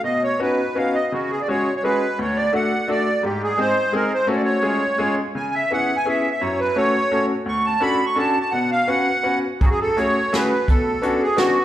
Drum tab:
HH |------|------|------|------|
SD |------|------|------|------|
BD |------|------|------|------|

HH |------|------|------|------|
SD |------|------|------|------|
BD |------|------|------|------|

HH |------|x-x-x-|x-x-x-|
SD |------|----o-|----o-|
BD |------|o-----|o-----|